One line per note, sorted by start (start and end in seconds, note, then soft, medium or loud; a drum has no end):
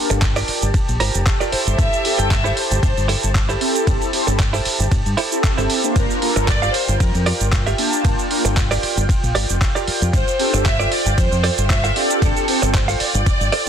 0.00 5.97 G4 medium
0.00 5.97 A5 medium
0.10 0.42 G1 medium
0.10 0.22 A#3 medium
0.10 0.22 D4 medium
0.10 0.22 F4 medium
0.10 0.22 A4 medium
0.10 muted clean electric guitar stroke loud
0.10 closed hi-hat medium
0.10 shaker medium
0.22 muted clean electric guitar stroke soft
0.22 kick loud
0.22 clap loud
0.22 closed hi-hat medium
0.22 ride medium
0.22 shaker medium
0.36 0.68 F4 medium
0.36 0.68 G4 medium
0.36 0.68 A#4 medium
0.36 0.68 D5 loud
0.36 open hi-hat medium
0.36 shaker soft
0.48 muted fingered electric bass stroke soft
0.48 open hi-hat loud
0.62 0.70 G1 loud
0.62 closed hi-hat medium
0.62 shaker medium
0.74 kick loud
0.74 closed hi-hat medium
0.74 ride medium
0.74 shaker medium
0.88 0.96 A#1 medium
0.88 closed hi-hat soft
0.88 shaker soft
1.00 1.10 G1 medium
1.00 1.20 F4 loud
1.00 1.21 G4 loud
1.00 1.21 A#4 loud
1.00 1.21 C5 loud
1.00 open hi-hat loud
1.14 1.22 F1 medium
1.14 closed hi-hat medium
1.14 shaker medium
1.26 kick loud
1.26 clap loud
1.26 closed hi-hat medium
1.26 ride medium
1.26 shaker medium
1.40 1.52 F4 medium
1.40 1.51 G4 medium
1.40 1.52 A#4 medium
1.40 1.51 D5 loud
1.40 closed hi-hat soft
1.40 shaker soft
1.52 2.05 E4 medium
1.52 2.05 G4 medium
1.52 2.05 A4 medium
1.52 2.05 C5 loud
1.52 1.77 C5 loud
1.52 muted fingered electric bass stroke soft
1.52 open hi-hat loud
1.67 1.75 G1 medium
1.67 closed hi-hat medium
1.67 shaker medium
1.78 1.88 G1 loud
1.78 2.19 E5 loud
1.78 kick loud
1.78 closed hi-hat medium
1.78 ride medium
1.78 shaker medium
1.93 closed hi-hat soft
1.93 shaker soft
2.04 2.17 C4 medium
2.04 2.17 E4 medium
2.04 2.17 G4 medium
2.04 2.17 A4 loud
2.04 open hi-hat loud
2.18 2.50 G1 medium
2.18 2.31 C4 loud
2.18 2.31 E4 medium
2.18 2.31 G4 medium
2.18 2.31 A4 loud
2.18 2.31 G5 loud
2.18 muted clean electric guitar stroke loud
2.18 closed hi-hat medium
2.18 shaker medium
2.30 2.57 E5 loud
2.30 muted clean electric guitar stroke soft
2.30 kick loud
2.30 clap loud
2.30 closed hi-hat medium
2.30 ride medium
2.30 shaker medium
2.44 2.77 E4 medium
2.44 2.77 G4 medium
2.44 2.77 A4 medium
2.44 2.77 C5 medium
2.44 shaker soft
2.57 3.61 C5 loud
2.57 open hi-hat loud
2.71 2.79 G1 loud
2.71 closed hi-hat medium
2.71 shaker medium
2.83 2.92 G1 loud
2.83 kick loud
2.83 closed hi-hat medium
2.83 ride medium
2.83 shaker medium
2.97 3.14 G1 loud
2.97 closed hi-hat soft
2.97 shaker soft
3.08 3.29 E4 loud
3.08 3.29 G4 medium
3.08 3.29 A4 loud
3.08 3.29 C5 loud
3.08 open hi-hat loud
3.23 3.55 G1 medium
3.23 closed hi-hat medium
3.23 shaker medium
3.35 kick loud
3.35 clap loud
3.35 closed hi-hat medium
3.35 ride medium
3.35 shaker medium
3.49 3.87 E4 medium
3.49 3.87 G4 medium
3.49 3.87 A4 medium
3.49 3.87 C5 loud
3.49 closed hi-hat soft
3.49 shaker soft
3.61 4.10 C4 medium
3.61 4.10 E4 medium
3.61 4.11 G4 medium
3.61 4.11 A4 medium
3.61 open hi-hat loud
3.75 closed hi-hat medium
3.75 shaker medium
3.87 3.97 G1 loud
3.87 kick loud
3.87 closed hi-hat medium
3.87 ride medium
3.87 shaker medium
4.02 closed hi-hat soft
4.02 shaker soft
4.13 4.25 C4 medium
4.13 4.25 E4 medium
4.13 4.26 G4 medium
4.13 4.26 C5 medium
4.13 open hi-hat loud
4.27 4.59 G1 medium
4.27 4.39 C4 medium
4.27 4.39 E4 medium
4.27 4.39 G4 medium
4.27 4.40 A4 medium
4.27 muted clean electric guitar stroke loud
4.27 shaker medium
4.39 muted clean electric guitar stroke soft
4.39 kick loud
4.39 clap loud
4.39 closed hi-hat medium
4.39 ride medium
4.39 shaker medium
4.53 4.86 E4 medium
4.53 4.86 G4 medium
4.53 4.86 A4 medium
4.53 4.86 C5 medium
4.53 open hi-hat medium
4.53 shaker soft
4.65 muted fingered electric bass stroke soft
4.65 open hi-hat loud
4.80 4.88 G1 loud
4.80 closed hi-hat medium
4.80 shaker medium
4.91 5.01 G1 medium
4.91 kick loud
4.91 closed hi-hat medium
4.91 ride medium
4.91 shaker medium
5.06 5.14 G2 loud
5.06 closed hi-hat soft
5.06 shaker soft
5.17 5.38 E4 loud
5.17 5.38 G4 medium
5.17 5.38 A4 loud
5.17 5.38 C5 loud
5.17 open hi-hat loud
5.31 5.80 C4 medium
5.31 5.81 E4 medium
5.31 5.81 G4 medium
5.31 5.81 A4 medium
5.31 shaker medium
5.44 kick loud
5.44 clap loud
5.44 closed hi-hat medium
5.44 ride medium
5.44 shaker medium
5.57 5.66 G1 medium
5.57 5.96 E4 medium
5.57 5.96 G4 medium
5.57 5.96 A4 medium
5.57 5.96 C5 loud
5.57 closed hi-hat soft
5.57 shaker soft
5.70 open hi-hat loud
5.83 6.19 A#3 medium
5.83 6.19 D4 medium
5.83 6.19 F4 medium
5.83 6.19 C5 medium
5.83 closed hi-hat soft
5.83 shaker medium
5.96 6.05 G1 loud
5.96 13.69 F4 medium
5.96 6.45 A#4 loud
5.96 13.69 G5 medium
5.96 kick loud
5.96 closed hi-hat medium
5.96 ride medium
5.96 shaker medium
6.10 closed hi-hat soft
6.10 shaker soft
6.21 6.34 A#3 medium
6.21 6.34 D4 medium
6.21 6.34 F4 medium
6.21 6.34 A4 loud
6.21 open hi-hat loud
6.36 6.68 G1 medium
6.36 6.48 A#3 medium
6.36 6.48 D4 medium
6.36 6.48 F4 medium
6.36 6.48 A4 loud
6.36 muted clean electric guitar stroke loud
6.36 closed hi-hat medium
6.36 shaker medium
6.48 6.74 D5 loud
6.48 muted clean electric guitar stroke soft
6.48 kick loud
6.48 clap loud
6.48 closed hi-hat medium
6.48 ride medium
6.48 shaker medium
6.62 6.94 F4 medium
6.62 6.94 G4 medium
6.62 6.95 A#4 medium
6.62 6.95 F5 loud
6.62 shaker soft
6.74 7.00 C5 loud
6.74 open hi-hat loud
6.88 6.96 G1 loud
6.88 closed hi-hat medium
6.88 shaker medium
7.00 7.10 F2 loud
7.00 7.52 A#4 medium
7.00 kick loud
7.00 closed hi-hat medium
7.00 ride medium
7.00 shaker medium
7.14 7.31 F2 loud
7.14 closed hi-hat soft
7.14 shaker soft
7.26 7.47 F4 loud
7.26 7.47 G4 medium
7.26 7.47 A#4 loud
7.26 7.47 D5 loud
7.26 open hi-hat loud
7.40 7.72 G1 medium
7.40 closed hi-hat medium
7.40 shaker medium
7.52 kick loud
7.52 clap loud
7.52 closed hi-hat medium
7.52 ride medium
7.52 shaker medium
7.66 8.05 F4 medium
7.66 8.05 G4 medium
7.66 8.05 A#4 medium
7.66 8.05 E5 medium
7.66 closed hi-hat soft
7.66 shaker soft
7.78 8.28 A#3 medium
7.78 8.28 D4 medium
7.78 8.28 F4 medium
7.78 8.28 A5 medium
7.78 open hi-hat loud
7.93 closed hi-hat soft
7.93 shaker medium
8.05 8.14 G1 loud
8.05 kick loud
8.05 closed hi-hat medium
8.05 ride medium
8.05 shaker medium
8.19 closed hi-hat soft
8.19 shaker soft
8.31 8.43 A#3 medium
8.31 8.43 D4 medium
8.31 8.43 F4 medium
8.31 8.43 A#4 medium
8.31 open hi-hat loud
8.45 8.76 G1 medium
8.45 8.57 A#3 medium
8.45 8.57 D4 medium
8.45 8.57 F4 medium
8.45 8.57 A4 medium
8.45 muted clean electric guitar stroke loud
8.45 closed hi-hat medium
8.45 shaker medium
8.57 muted clean electric guitar stroke soft
8.57 kick loud
8.57 clap loud
8.57 closed hi-hat medium
8.57 ride medium
8.57 shaker medium
8.71 9.03 F4 medium
8.71 9.03 G4 medium
8.71 9.03 A#4 medium
8.71 9.03 D5 loud
8.71 open hi-hat medium
8.71 shaker soft
8.83 muted fingered electric bass stroke soft
8.83 open hi-hat loud
8.97 9.05 G1 loud
8.97 closed hi-hat medium
8.97 shaker medium
9.09 kick loud
9.09 closed hi-hat medium
9.09 ride medium
9.09 shaker medium
9.23 9.31 A#1 loud
9.23 closed hi-hat soft
9.23 shaker soft
9.35 9.45 G1 medium
9.35 9.55 F4 loud
9.35 9.55 G4 medium
9.35 9.55 A#4 loud
9.35 9.55 D5 loud
9.35 open hi-hat loud
9.49 9.57 F1 medium
9.49 closed hi-hat medium
9.49 shaker medium
9.61 kick loud
9.61 clap loud
9.61 closed hi-hat medium
9.61 ride medium
9.61 shaker medium
9.75 10.13 F4 medium
9.75 10.13 G4 medium
9.75 10.13 A#4 medium
9.75 10.13 D5 loud
9.75 closed hi-hat soft
9.75 shaker soft
9.88 muted fingered electric bass stroke soft
9.88 open hi-hat loud
10.02 10.09 F2 medium
10.02 closed hi-hat medium
10.02 shaker medium
10.13 10.23 G1 loud
10.13 10.62 C5 loud
10.13 kick loud
10.13 closed hi-hat medium
10.13 ride medium
10.13 shaker medium
10.28 closed hi-hat soft
10.28 shaker soft
10.39 10.51 C4 medium
10.39 10.51 D4 medium
10.39 10.52 G4 medium
10.39 10.52 A4 loud
10.39 open hi-hat loud
10.53 10.85 G1 medium
10.53 10.65 C4 loud
10.53 10.66 D4 medium
10.53 10.66 G4 medium
10.53 10.66 A4 loud
10.53 muted clean electric guitar stroke loud
10.53 closed hi-hat medium
10.53 shaker medium
10.66 10.92 E5 loud
10.66 kick loud
10.66 clap loud
10.66 closed hi-hat medium
10.66 ride medium
10.66 shaker medium
10.79 11.12 F4 medium
10.79 11.12 A4 medium
10.79 11.12 C5 medium
10.79 11.12 D5 loud
10.79 shaker soft
10.92 11.18 D5 loud
10.92 open hi-hat loud
11.06 11.14 G1 loud
11.06 closed hi-hat medium
11.06 shaker medium
11.18 11.27 F2 loud
11.18 11.70 C5 loud
11.18 kick loud
11.18 closed hi-hat medium
11.18 ride medium
11.18 shaker medium
11.32 11.48 F2 loud
11.32 closed hi-hat soft
11.32 shaker soft
11.44 11.64 F4 loud
11.44 11.64 A4 loud
11.44 11.64 C5 loud
11.44 11.64 D5 loud
11.44 open hi-hat loud
11.58 11.90 G1 medium
11.58 closed hi-hat medium
11.58 shaker medium
11.70 11.96 E5 loud
11.70 kick loud
11.70 clap loud
11.70 closed hi-hat medium
11.70 ride medium
11.70 shaker medium
11.84 12.22 F4 medium
11.84 12.22 A4 medium
11.84 12.22 C5 medium
11.84 12.22 F5 medium
11.84 closed hi-hat soft
11.84 shaker soft
11.96 12.45 C4 medium
11.96 12.45 D4 medium
11.96 12.46 G4 medium
11.96 12.46 A4 medium
11.96 12.22 D5 loud
11.96 open hi-hat loud
12.10 closed hi-hat medium
12.10 shaker medium
12.22 12.32 G1 loud
12.22 12.74 A4 loud
12.22 kick loud
12.22 closed hi-hat medium
12.22 ride medium
12.22 shaker medium
12.36 closed hi-hat soft
12.36 shaker soft
12.48 12.60 C4 medium
12.48 12.60 D4 medium
12.48 12.60 G4 medium
12.48 12.61 C5 loud
12.48 open hi-hat loud
12.62 12.94 G1 medium
12.62 12.74 C4 medium
12.62 12.74 D4 medium
12.62 12.74 G4 medium
12.62 12.75 A4 medium
12.62 muted clean electric guitar stroke loud
12.62 closed hi-hat medium
12.62 shaker medium
12.74 12.99 C5 loud
12.74 muted clean electric guitar stroke soft
12.74 kick loud
12.74 clap loud
12.74 closed hi-hat medium
12.74 ride medium
12.74 shaker medium
12.88 13.20 F4 medium
12.88 13.21 A4 medium
12.88 13.21 C5 medium
12.88 13.21 F5 loud
12.88 open hi-hat medium
12.88 shaker soft
13.00 13.69 D5 loud
13.00 open hi-hat loud
13.15 13.22 G1 loud
13.15 shaker medium
13.26 kick loud
13.26 closed hi-hat medium
13.26 ride medium
13.26 shaker medium
13.41 13.48 G1 loud
13.41 closed hi-hat soft
13.41 shaker soft
13.52 13.69 F4 loud
13.52 13.69 A4 loud
13.52 13.69 C5 loud
13.52 13.69 D5 loud
13.52 open hi-hat loud